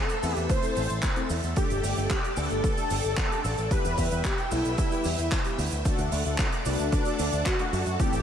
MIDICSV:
0, 0, Header, 1, 6, 480
1, 0, Start_track
1, 0, Tempo, 535714
1, 1404, Time_signature, 4, 2, 24, 8
1, 7367, End_track
2, 0, Start_track
2, 0, Title_t, "String machine"
2, 0, Program_c, 0, 50
2, 0, Note_on_c, 0, 69, 83
2, 0, Note_on_c, 0, 76, 78
2, 0, Note_on_c, 0, 81, 76
2, 0, Note_on_c, 0, 88, 91
2, 1384, Note_off_c, 0, 76, 0
2, 1384, Note_off_c, 0, 81, 0
2, 1384, Note_off_c, 0, 88, 0
2, 1402, Note_on_c, 0, 86, 92
2, 1403, Note_on_c, 0, 74, 79
2, 1403, Note_on_c, 0, 79, 77
2, 3288, Note_off_c, 0, 69, 0
2, 3304, Note_off_c, 0, 74, 0
2, 3304, Note_off_c, 0, 79, 0
2, 3304, Note_off_c, 0, 86, 0
2, 3322, Note_on_c, 0, 76, 77
2, 3322, Note_on_c, 0, 88, 92
2, 3323, Note_on_c, 0, 71, 83
2, 3323, Note_on_c, 0, 79, 75
2, 5224, Note_off_c, 0, 71, 0
2, 5224, Note_off_c, 0, 76, 0
2, 5224, Note_off_c, 0, 79, 0
2, 5224, Note_off_c, 0, 88, 0
2, 5245, Note_on_c, 0, 69, 84
2, 5245, Note_on_c, 0, 74, 78
2, 5245, Note_on_c, 0, 78, 78
2, 5246, Note_on_c, 0, 86, 93
2, 7145, Note_off_c, 0, 78, 0
2, 7146, Note_off_c, 0, 74, 0
2, 7146, Note_off_c, 0, 86, 0
2, 7166, Note_on_c, 0, 76, 75
2, 7166, Note_on_c, 0, 81, 80
2, 7166, Note_on_c, 0, 88, 93
2, 7367, Note_off_c, 0, 69, 0
2, 7367, Note_off_c, 0, 76, 0
2, 7367, Note_off_c, 0, 81, 0
2, 7367, Note_off_c, 0, 88, 0
2, 7367, End_track
3, 0, Start_track
3, 0, Title_t, "Analog synth lead"
3, 0, Program_c, 1, 81
3, 0, Note_on_c, 1, 69, 105
3, 410, Note_off_c, 1, 69, 0
3, 443, Note_on_c, 1, 72, 102
3, 1128, Note_off_c, 1, 72, 0
3, 1402, Note_on_c, 1, 67, 100
3, 1849, Note_off_c, 1, 67, 0
3, 1885, Note_on_c, 1, 67, 96
3, 2123, Note_on_c, 1, 69, 119
3, 2137, Note_off_c, 1, 67, 0
3, 3323, Note_on_c, 1, 71, 121
3, 3337, Note_off_c, 1, 69, 0
3, 3802, Note_on_c, 1, 67, 104
3, 3816, Note_off_c, 1, 71, 0
3, 4042, Note_on_c, 1, 64, 100
3, 4056, Note_off_c, 1, 67, 0
3, 5003, Note_off_c, 1, 64, 0
3, 5963, Note_on_c, 1, 62, 104
3, 6683, Note_on_c, 1, 66, 113
3, 6697, Note_off_c, 1, 62, 0
3, 7163, Note_on_c, 1, 67, 123
3, 7176, Note_off_c, 1, 66, 0
3, 7367, Note_off_c, 1, 67, 0
3, 7367, End_track
4, 0, Start_track
4, 0, Title_t, "Analog polysynth"
4, 0, Program_c, 2, 90
4, 202, Note_on_c, 2, 60, 84
4, 202, Note_on_c, 2, 71, 102
4, 203, Note_on_c, 2, 57, 91
4, 203, Note_on_c, 2, 64, 83
4, 534, Note_off_c, 2, 60, 0
4, 534, Note_off_c, 2, 71, 0
4, 535, Note_off_c, 2, 57, 0
4, 535, Note_off_c, 2, 64, 0
4, 561, Note_on_c, 2, 57, 102
4, 562, Note_on_c, 2, 60, 95
4, 562, Note_on_c, 2, 64, 93
4, 562, Note_on_c, 2, 69, 111
4, 727, Note_off_c, 2, 57, 0
4, 727, Note_off_c, 2, 60, 0
4, 727, Note_off_c, 2, 64, 0
4, 727, Note_off_c, 2, 69, 0
4, 1044, Note_on_c, 2, 57, 78
4, 1044, Note_on_c, 2, 60, 70
4, 1044, Note_on_c, 2, 64, 71
4, 1044, Note_on_c, 2, 69, 88
4, 1208, Note_off_c, 2, 57, 0
4, 1208, Note_off_c, 2, 60, 0
4, 1208, Note_off_c, 2, 64, 0
4, 1208, Note_off_c, 2, 69, 0
4, 1404, Note_on_c, 2, 57, 93
4, 1404, Note_on_c, 2, 62, 89
4, 1404, Note_on_c, 2, 67, 87
4, 1404, Note_on_c, 2, 69, 100
4, 1735, Note_off_c, 2, 57, 0
4, 1735, Note_off_c, 2, 62, 0
4, 1735, Note_off_c, 2, 67, 0
4, 1735, Note_off_c, 2, 69, 0
4, 1765, Note_on_c, 2, 57, 78
4, 1766, Note_on_c, 2, 62, 68
4, 1766, Note_on_c, 2, 67, 69
4, 1766, Note_on_c, 2, 69, 85
4, 1929, Note_off_c, 2, 57, 0
4, 1929, Note_off_c, 2, 62, 0
4, 1929, Note_off_c, 2, 67, 0
4, 1929, Note_off_c, 2, 69, 0
4, 2125, Note_on_c, 2, 57, 92
4, 2125, Note_on_c, 2, 62, 85
4, 2125, Note_on_c, 2, 67, 85
4, 2125, Note_on_c, 2, 71, 101
4, 2456, Note_off_c, 2, 57, 0
4, 2456, Note_off_c, 2, 62, 0
4, 2456, Note_off_c, 2, 67, 0
4, 2456, Note_off_c, 2, 71, 0
4, 2485, Note_on_c, 2, 69, 110
4, 2486, Note_on_c, 2, 57, 100
4, 2486, Note_on_c, 2, 62, 90
4, 2486, Note_on_c, 2, 67, 93
4, 2649, Note_off_c, 2, 57, 0
4, 2649, Note_off_c, 2, 62, 0
4, 2649, Note_off_c, 2, 67, 0
4, 2649, Note_off_c, 2, 69, 0
4, 2965, Note_on_c, 2, 57, 78
4, 2965, Note_on_c, 2, 67, 73
4, 2966, Note_on_c, 2, 62, 74
4, 2966, Note_on_c, 2, 69, 86
4, 3129, Note_off_c, 2, 57, 0
4, 3129, Note_off_c, 2, 62, 0
4, 3129, Note_off_c, 2, 67, 0
4, 3129, Note_off_c, 2, 69, 0
4, 3325, Note_on_c, 2, 55, 93
4, 3325, Note_on_c, 2, 59, 86
4, 3326, Note_on_c, 2, 64, 84
4, 3326, Note_on_c, 2, 67, 105
4, 3656, Note_off_c, 2, 55, 0
4, 3656, Note_off_c, 2, 59, 0
4, 3656, Note_off_c, 2, 64, 0
4, 3656, Note_off_c, 2, 67, 0
4, 3684, Note_on_c, 2, 55, 77
4, 3684, Note_on_c, 2, 67, 84
4, 3685, Note_on_c, 2, 59, 68
4, 3685, Note_on_c, 2, 64, 69
4, 3848, Note_off_c, 2, 55, 0
4, 3848, Note_off_c, 2, 67, 0
4, 3849, Note_off_c, 2, 59, 0
4, 3849, Note_off_c, 2, 64, 0
4, 4043, Note_on_c, 2, 55, 93
4, 4043, Note_on_c, 2, 64, 82
4, 4043, Note_on_c, 2, 69, 99
4, 4044, Note_on_c, 2, 59, 83
4, 4375, Note_off_c, 2, 55, 0
4, 4375, Note_off_c, 2, 59, 0
4, 4375, Note_off_c, 2, 64, 0
4, 4375, Note_off_c, 2, 69, 0
4, 4403, Note_on_c, 2, 59, 89
4, 4403, Note_on_c, 2, 64, 91
4, 4404, Note_on_c, 2, 55, 102
4, 4404, Note_on_c, 2, 67, 111
4, 4568, Note_off_c, 2, 55, 0
4, 4568, Note_off_c, 2, 59, 0
4, 4568, Note_off_c, 2, 64, 0
4, 4568, Note_off_c, 2, 67, 0
4, 4885, Note_on_c, 2, 55, 77
4, 4885, Note_on_c, 2, 59, 73
4, 4885, Note_on_c, 2, 64, 71
4, 4885, Note_on_c, 2, 67, 88
4, 5049, Note_off_c, 2, 55, 0
4, 5049, Note_off_c, 2, 59, 0
4, 5049, Note_off_c, 2, 64, 0
4, 5049, Note_off_c, 2, 67, 0
4, 5246, Note_on_c, 2, 57, 94
4, 5246, Note_on_c, 2, 62, 89
4, 5246, Note_on_c, 2, 69, 105
4, 5247, Note_on_c, 2, 66, 90
4, 5576, Note_off_c, 2, 57, 0
4, 5576, Note_off_c, 2, 62, 0
4, 5576, Note_off_c, 2, 69, 0
4, 5577, Note_off_c, 2, 66, 0
4, 5605, Note_on_c, 2, 62, 68
4, 5605, Note_on_c, 2, 66, 72
4, 5606, Note_on_c, 2, 57, 74
4, 5606, Note_on_c, 2, 69, 84
4, 5769, Note_off_c, 2, 57, 0
4, 5769, Note_off_c, 2, 62, 0
4, 5769, Note_off_c, 2, 66, 0
4, 5769, Note_off_c, 2, 69, 0
4, 5964, Note_on_c, 2, 57, 92
4, 5964, Note_on_c, 2, 71, 100
4, 5965, Note_on_c, 2, 62, 84
4, 5965, Note_on_c, 2, 66, 86
4, 6295, Note_off_c, 2, 57, 0
4, 6295, Note_off_c, 2, 71, 0
4, 6296, Note_off_c, 2, 62, 0
4, 6296, Note_off_c, 2, 66, 0
4, 6324, Note_on_c, 2, 57, 102
4, 6324, Note_on_c, 2, 62, 93
4, 6324, Note_on_c, 2, 66, 91
4, 6324, Note_on_c, 2, 69, 111
4, 6488, Note_off_c, 2, 57, 0
4, 6488, Note_off_c, 2, 62, 0
4, 6488, Note_off_c, 2, 66, 0
4, 6488, Note_off_c, 2, 69, 0
4, 6802, Note_on_c, 2, 57, 80
4, 6802, Note_on_c, 2, 69, 88
4, 6803, Note_on_c, 2, 62, 71
4, 6803, Note_on_c, 2, 66, 74
4, 6967, Note_off_c, 2, 57, 0
4, 6967, Note_off_c, 2, 69, 0
4, 6968, Note_off_c, 2, 62, 0
4, 6968, Note_off_c, 2, 66, 0
4, 7163, Note_on_c, 2, 57, 93
4, 7163, Note_on_c, 2, 60, 86
4, 7163, Note_on_c, 2, 64, 87
4, 7164, Note_on_c, 2, 69, 102
4, 7367, Note_off_c, 2, 57, 0
4, 7367, Note_off_c, 2, 60, 0
4, 7367, Note_off_c, 2, 64, 0
4, 7367, Note_off_c, 2, 69, 0
4, 7367, End_track
5, 0, Start_track
5, 0, Title_t, "Picked electric bass"
5, 0, Program_c, 3, 34
5, 206, Note_on_c, 3, 40, 94
5, 290, Note_off_c, 3, 40, 0
5, 326, Note_on_c, 3, 40, 82
5, 410, Note_off_c, 3, 40, 0
5, 686, Note_on_c, 3, 33, 94
5, 770, Note_off_c, 3, 33, 0
5, 805, Note_on_c, 3, 33, 81
5, 890, Note_off_c, 3, 33, 0
5, 1164, Note_on_c, 3, 40, 90
5, 1249, Note_off_c, 3, 40, 0
5, 1284, Note_on_c, 3, 40, 79
5, 1369, Note_off_c, 3, 40, 0
5, 1523, Note_on_c, 3, 31, 79
5, 1609, Note_off_c, 3, 31, 0
5, 1643, Note_on_c, 3, 31, 92
5, 1729, Note_off_c, 3, 31, 0
5, 1762, Note_on_c, 3, 31, 85
5, 1848, Note_off_c, 3, 31, 0
5, 2123, Note_on_c, 3, 38, 96
5, 2209, Note_off_c, 3, 38, 0
5, 2244, Note_on_c, 3, 31, 87
5, 2329, Note_off_c, 3, 31, 0
5, 2603, Note_on_c, 3, 31, 95
5, 2689, Note_off_c, 3, 31, 0
5, 2724, Note_on_c, 3, 31, 81
5, 2809, Note_off_c, 3, 31, 0
5, 3085, Note_on_c, 3, 33, 94
5, 3170, Note_off_c, 3, 33, 0
5, 3205, Note_on_c, 3, 33, 80
5, 3289, Note_off_c, 3, 33, 0
5, 3446, Note_on_c, 3, 40, 78
5, 3530, Note_off_c, 3, 40, 0
5, 3564, Note_on_c, 3, 40, 95
5, 3649, Note_off_c, 3, 40, 0
5, 3686, Note_on_c, 3, 40, 82
5, 3770, Note_off_c, 3, 40, 0
5, 4046, Note_on_c, 3, 35, 94
5, 4130, Note_off_c, 3, 35, 0
5, 4166, Note_on_c, 3, 35, 86
5, 4250, Note_off_c, 3, 35, 0
5, 4525, Note_on_c, 3, 40, 95
5, 4610, Note_off_c, 3, 40, 0
5, 4643, Note_on_c, 3, 40, 79
5, 4729, Note_off_c, 3, 40, 0
5, 5002, Note_on_c, 3, 38, 95
5, 5088, Note_off_c, 3, 38, 0
5, 5122, Note_on_c, 3, 38, 83
5, 5208, Note_off_c, 3, 38, 0
5, 5362, Note_on_c, 3, 38, 76
5, 5448, Note_off_c, 3, 38, 0
5, 5483, Note_on_c, 3, 38, 93
5, 5569, Note_off_c, 3, 38, 0
5, 5603, Note_on_c, 3, 38, 83
5, 5689, Note_off_c, 3, 38, 0
5, 5964, Note_on_c, 3, 36, 96
5, 6049, Note_off_c, 3, 36, 0
5, 6084, Note_on_c, 3, 38, 82
5, 6169, Note_off_c, 3, 38, 0
5, 6444, Note_on_c, 3, 38, 94
5, 6530, Note_off_c, 3, 38, 0
5, 6562, Note_on_c, 3, 38, 83
5, 6648, Note_off_c, 3, 38, 0
5, 6923, Note_on_c, 3, 42, 95
5, 7009, Note_off_c, 3, 42, 0
5, 7042, Note_on_c, 3, 42, 84
5, 7128, Note_off_c, 3, 42, 0
5, 7283, Note_on_c, 3, 33, 78
5, 7367, Note_off_c, 3, 33, 0
5, 7367, End_track
6, 0, Start_track
6, 0, Title_t, "Drums"
6, 81, Note_on_c, 9, 69, 45
6, 85, Note_on_c, 9, 42, 60
6, 171, Note_off_c, 9, 69, 0
6, 175, Note_off_c, 9, 42, 0
6, 205, Note_on_c, 9, 69, 82
6, 207, Note_on_c, 9, 46, 93
6, 295, Note_off_c, 9, 69, 0
6, 297, Note_off_c, 9, 46, 0
6, 325, Note_on_c, 9, 69, 44
6, 327, Note_on_c, 9, 42, 56
6, 414, Note_off_c, 9, 69, 0
6, 417, Note_off_c, 9, 42, 0
6, 443, Note_on_c, 9, 42, 86
6, 444, Note_on_c, 9, 36, 124
6, 445, Note_on_c, 9, 69, 53
6, 533, Note_off_c, 9, 42, 0
6, 534, Note_off_c, 9, 36, 0
6, 535, Note_off_c, 9, 69, 0
6, 560, Note_on_c, 9, 42, 57
6, 567, Note_on_c, 9, 69, 43
6, 650, Note_off_c, 9, 42, 0
6, 657, Note_off_c, 9, 69, 0
6, 676, Note_on_c, 9, 46, 111
6, 686, Note_on_c, 9, 69, 85
6, 765, Note_off_c, 9, 46, 0
6, 775, Note_off_c, 9, 69, 0
6, 804, Note_on_c, 9, 69, 44
6, 805, Note_on_c, 9, 42, 58
6, 893, Note_off_c, 9, 69, 0
6, 894, Note_off_c, 9, 42, 0
6, 920, Note_on_c, 9, 39, 116
6, 921, Note_on_c, 9, 69, 58
6, 922, Note_on_c, 9, 42, 83
6, 924, Note_on_c, 9, 36, 127
6, 1009, Note_off_c, 9, 39, 0
6, 1011, Note_off_c, 9, 42, 0
6, 1011, Note_off_c, 9, 69, 0
6, 1014, Note_off_c, 9, 36, 0
6, 1040, Note_on_c, 9, 42, 58
6, 1130, Note_off_c, 9, 42, 0
6, 1160, Note_on_c, 9, 69, 69
6, 1170, Note_on_c, 9, 46, 99
6, 1249, Note_off_c, 9, 69, 0
6, 1259, Note_off_c, 9, 46, 0
6, 1283, Note_on_c, 9, 69, 47
6, 1291, Note_on_c, 9, 42, 56
6, 1373, Note_off_c, 9, 69, 0
6, 1381, Note_off_c, 9, 42, 0
6, 1400, Note_on_c, 9, 42, 81
6, 1404, Note_on_c, 9, 36, 123
6, 1407, Note_on_c, 9, 69, 56
6, 1489, Note_off_c, 9, 42, 0
6, 1494, Note_off_c, 9, 36, 0
6, 1496, Note_off_c, 9, 69, 0
6, 1524, Note_on_c, 9, 42, 54
6, 1527, Note_on_c, 9, 69, 47
6, 1614, Note_off_c, 9, 42, 0
6, 1617, Note_off_c, 9, 69, 0
6, 1644, Note_on_c, 9, 46, 107
6, 1650, Note_on_c, 9, 69, 85
6, 1733, Note_off_c, 9, 46, 0
6, 1739, Note_off_c, 9, 69, 0
6, 1767, Note_on_c, 9, 69, 49
6, 1768, Note_on_c, 9, 42, 57
6, 1857, Note_off_c, 9, 42, 0
6, 1857, Note_off_c, 9, 69, 0
6, 1884, Note_on_c, 9, 36, 122
6, 1885, Note_on_c, 9, 42, 77
6, 1887, Note_on_c, 9, 39, 113
6, 1887, Note_on_c, 9, 69, 59
6, 1974, Note_off_c, 9, 36, 0
6, 1975, Note_off_c, 9, 42, 0
6, 1976, Note_off_c, 9, 39, 0
6, 1976, Note_off_c, 9, 69, 0
6, 2012, Note_on_c, 9, 42, 53
6, 2101, Note_off_c, 9, 42, 0
6, 2119, Note_on_c, 9, 69, 72
6, 2120, Note_on_c, 9, 46, 92
6, 2209, Note_off_c, 9, 69, 0
6, 2210, Note_off_c, 9, 46, 0
6, 2241, Note_on_c, 9, 42, 55
6, 2243, Note_on_c, 9, 69, 46
6, 2331, Note_off_c, 9, 42, 0
6, 2333, Note_off_c, 9, 69, 0
6, 2364, Note_on_c, 9, 36, 122
6, 2364, Note_on_c, 9, 42, 77
6, 2367, Note_on_c, 9, 69, 61
6, 2454, Note_off_c, 9, 36, 0
6, 2454, Note_off_c, 9, 42, 0
6, 2457, Note_off_c, 9, 69, 0
6, 2486, Note_on_c, 9, 69, 46
6, 2487, Note_on_c, 9, 42, 53
6, 2576, Note_off_c, 9, 42, 0
6, 2576, Note_off_c, 9, 69, 0
6, 2600, Note_on_c, 9, 69, 88
6, 2602, Note_on_c, 9, 46, 114
6, 2690, Note_off_c, 9, 69, 0
6, 2692, Note_off_c, 9, 46, 0
6, 2720, Note_on_c, 9, 42, 56
6, 2722, Note_on_c, 9, 69, 49
6, 2809, Note_off_c, 9, 42, 0
6, 2812, Note_off_c, 9, 69, 0
6, 2839, Note_on_c, 9, 69, 58
6, 2844, Note_on_c, 9, 36, 123
6, 2844, Note_on_c, 9, 39, 114
6, 2848, Note_on_c, 9, 42, 73
6, 2929, Note_off_c, 9, 69, 0
6, 2933, Note_off_c, 9, 39, 0
6, 2934, Note_off_c, 9, 36, 0
6, 2937, Note_off_c, 9, 42, 0
6, 2976, Note_on_c, 9, 42, 56
6, 3066, Note_off_c, 9, 42, 0
6, 3085, Note_on_c, 9, 46, 94
6, 3087, Note_on_c, 9, 69, 82
6, 3175, Note_off_c, 9, 46, 0
6, 3177, Note_off_c, 9, 69, 0
6, 3206, Note_on_c, 9, 69, 47
6, 3213, Note_on_c, 9, 42, 59
6, 3296, Note_off_c, 9, 69, 0
6, 3303, Note_off_c, 9, 42, 0
6, 3324, Note_on_c, 9, 36, 118
6, 3324, Note_on_c, 9, 42, 81
6, 3325, Note_on_c, 9, 69, 53
6, 3414, Note_off_c, 9, 36, 0
6, 3414, Note_off_c, 9, 42, 0
6, 3415, Note_off_c, 9, 69, 0
6, 3447, Note_on_c, 9, 42, 55
6, 3449, Note_on_c, 9, 69, 50
6, 3537, Note_off_c, 9, 42, 0
6, 3539, Note_off_c, 9, 69, 0
6, 3563, Note_on_c, 9, 46, 116
6, 3564, Note_on_c, 9, 36, 60
6, 3565, Note_on_c, 9, 69, 80
6, 3653, Note_off_c, 9, 46, 0
6, 3654, Note_off_c, 9, 36, 0
6, 3655, Note_off_c, 9, 69, 0
6, 3681, Note_on_c, 9, 42, 53
6, 3683, Note_on_c, 9, 69, 49
6, 3771, Note_off_c, 9, 42, 0
6, 3773, Note_off_c, 9, 69, 0
6, 3798, Note_on_c, 9, 42, 68
6, 3805, Note_on_c, 9, 36, 118
6, 3806, Note_on_c, 9, 39, 110
6, 3811, Note_on_c, 9, 69, 52
6, 3887, Note_off_c, 9, 42, 0
6, 3894, Note_off_c, 9, 36, 0
6, 3896, Note_off_c, 9, 39, 0
6, 3900, Note_off_c, 9, 69, 0
6, 3924, Note_on_c, 9, 42, 57
6, 4014, Note_off_c, 9, 42, 0
6, 4044, Note_on_c, 9, 69, 89
6, 4046, Note_on_c, 9, 46, 93
6, 4133, Note_off_c, 9, 69, 0
6, 4136, Note_off_c, 9, 46, 0
6, 4166, Note_on_c, 9, 42, 56
6, 4166, Note_on_c, 9, 69, 49
6, 4255, Note_off_c, 9, 42, 0
6, 4255, Note_off_c, 9, 69, 0
6, 4280, Note_on_c, 9, 42, 80
6, 4285, Note_on_c, 9, 36, 119
6, 4286, Note_on_c, 9, 69, 64
6, 4370, Note_off_c, 9, 42, 0
6, 4374, Note_off_c, 9, 36, 0
6, 4376, Note_off_c, 9, 69, 0
6, 4406, Note_on_c, 9, 69, 50
6, 4412, Note_on_c, 9, 42, 57
6, 4495, Note_off_c, 9, 69, 0
6, 4502, Note_off_c, 9, 42, 0
6, 4515, Note_on_c, 9, 69, 82
6, 4527, Note_on_c, 9, 46, 121
6, 4604, Note_off_c, 9, 69, 0
6, 4617, Note_off_c, 9, 46, 0
6, 4641, Note_on_c, 9, 42, 53
6, 4648, Note_on_c, 9, 69, 51
6, 4731, Note_off_c, 9, 42, 0
6, 4738, Note_off_c, 9, 69, 0
6, 4761, Note_on_c, 9, 69, 61
6, 4765, Note_on_c, 9, 36, 118
6, 4765, Note_on_c, 9, 39, 105
6, 4768, Note_on_c, 9, 42, 77
6, 4851, Note_off_c, 9, 69, 0
6, 4854, Note_off_c, 9, 36, 0
6, 4854, Note_off_c, 9, 39, 0
6, 4858, Note_off_c, 9, 42, 0
6, 4879, Note_on_c, 9, 42, 57
6, 4968, Note_off_c, 9, 42, 0
6, 5004, Note_on_c, 9, 46, 103
6, 5007, Note_on_c, 9, 69, 80
6, 5094, Note_off_c, 9, 46, 0
6, 5097, Note_off_c, 9, 69, 0
6, 5123, Note_on_c, 9, 69, 50
6, 5126, Note_on_c, 9, 42, 53
6, 5213, Note_off_c, 9, 69, 0
6, 5216, Note_off_c, 9, 42, 0
6, 5243, Note_on_c, 9, 69, 62
6, 5245, Note_on_c, 9, 36, 116
6, 5247, Note_on_c, 9, 42, 83
6, 5332, Note_off_c, 9, 69, 0
6, 5334, Note_off_c, 9, 36, 0
6, 5336, Note_off_c, 9, 42, 0
6, 5359, Note_on_c, 9, 69, 43
6, 5365, Note_on_c, 9, 42, 52
6, 5449, Note_off_c, 9, 69, 0
6, 5454, Note_off_c, 9, 42, 0
6, 5484, Note_on_c, 9, 46, 109
6, 5484, Note_on_c, 9, 69, 83
6, 5574, Note_off_c, 9, 46, 0
6, 5574, Note_off_c, 9, 69, 0
6, 5602, Note_on_c, 9, 42, 58
6, 5608, Note_on_c, 9, 69, 47
6, 5692, Note_off_c, 9, 42, 0
6, 5697, Note_off_c, 9, 69, 0
6, 5717, Note_on_c, 9, 42, 79
6, 5719, Note_on_c, 9, 39, 105
6, 5724, Note_on_c, 9, 36, 121
6, 5727, Note_on_c, 9, 69, 52
6, 5807, Note_off_c, 9, 42, 0
6, 5808, Note_off_c, 9, 39, 0
6, 5814, Note_off_c, 9, 36, 0
6, 5816, Note_off_c, 9, 69, 0
6, 5845, Note_on_c, 9, 42, 55
6, 5935, Note_off_c, 9, 42, 0
6, 5961, Note_on_c, 9, 46, 105
6, 5962, Note_on_c, 9, 69, 82
6, 6051, Note_off_c, 9, 46, 0
6, 6052, Note_off_c, 9, 69, 0
6, 6085, Note_on_c, 9, 69, 51
6, 6087, Note_on_c, 9, 42, 53
6, 6175, Note_off_c, 9, 69, 0
6, 6176, Note_off_c, 9, 42, 0
6, 6203, Note_on_c, 9, 42, 80
6, 6205, Note_on_c, 9, 36, 116
6, 6207, Note_on_c, 9, 69, 61
6, 6292, Note_off_c, 9, 42, 0
6, 6294, Note_off_c, 9, 36, 0
6, 6296, Note_off_c, 9, 69, 0
6, 6316, Note_on_c, 9, 69, 47
6, 6327, Note_on_c, 9, 42, 60
6, 6405, Note_off_c, 9, 69, 0
6, 6416, Note_off_c, 9, 42, 0
6, 6442, Note_on_c, 9, 69, 83
6, 6443, Note_on_c, 9, 46, 107
6, 6531, Note_off_c, 9, 69, 0
6, 6532, Note_off_c, 9, 46, 0
6, 6563, Note_on_c, 9, 42, 53
6, 6566, Note_on_c, 9, 69, 49
6, 6653, Note_off_c, 9, 42, 0
6, 6656, Note_off_c, 9, 69, 0
6, 6682, Note_on_c, 9, 42, 71
6, 6684, Note_on_c, 9, 36, 113
6, 6685, Note_on_c, 9, 39, 112
6, 6689, Note_on_c, 9, 69, 56
6, 6772, Note_off_c, 9, 42, 0
6, 6774, Note_off_c, 9, 36, 0
6, 6774, Note_off_c, 9, 39, 0
6, 6779, Note_off_c, 9, 69, 0
6, 6802, Note_on_c, 9, 42, 51
6, 6891, Note_off_c, 9, 42, 0
6, 6925, Note_on_c, 9, 46, 100
6, 6929, Note_on_c, 9, 69, 83
6, 7015, Note_off_c, 9, 46, 0
6, 7018, Note_off_c, 9, 69, 0
6, 7042, Note_on_c, 9, 42, 53
6, 7045, Note_on_c, 9, 69, 50
6, 7132, Note_off_c, 9, 42, 0
6, 7134, Note_off_c, 9, 69, 0
6, 7164, Note_on_c, 9, 36, 121
6, 7164, Note_on_c, 9, 42, 69
6, 7168, Note_on_c, 9, 69, 55
6, 7254, Note_off_c, 9, 36, 0
6, 7254, Note_off_c, 9, 42, 0
6, 7257, Note_off_c, 9, 69, 0
6, 7283, Note_on_c, 9, 42, 58
6, 7284, Note_on_c, 9, 69, 44
6, 7367, Note_off_c, 9, 42, 0
6, 7367, Note_off_c, 9, 69, 0
6, 7367, End_track
0, 0, End_of_file